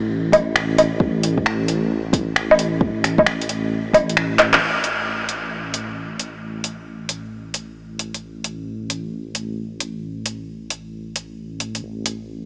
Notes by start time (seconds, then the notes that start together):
Already playing: A1
0.33 kick, closed hi-hat, low woodblock
0.56 finger snap
0.78 closed hi-hat, low woodblock
1.00 kick
1.23 closed hi-hat
1.38 kick
1.46 finger snap
1.68 closed hi-hat
2.13 kick, closed hi-hat
2.36 finger snap
2.51 low woodblock
2.59 closed hi-hat
2.81 kick
3.04 finger snap, closed hi-hat
3.18 kick, low woodblock
3.26 finger snap
3.41 closed hi-hat
3.49 closed hi-hat
3.93 kick, closed hi-hat, low woodblock
4.09 closed hi-hat
4.17 finger snap
4.39 clap, closed hi-hat, low woodblock
4.53 clap
4.61 A1
4.84 open hi-hat
5.29 open hi-hat
5.74 open hi-hat
6.19 open hi-hat
6.64 open hi-hat
7.09 open hi-hat
7.54 open hi-hat
7.99 open hi-hat
8.14 open hi-hat
8.44 open hi-hat
8.90 open hi-hat
9.35 open hi-hat
9.80 open hi-hat
10.26 open hi-hat
10.70 open hi-hat
11.16 open hi-hat
11.60 open hi-hat
11.75 open hi-hat
11.82 A1
12.06 open hi-hat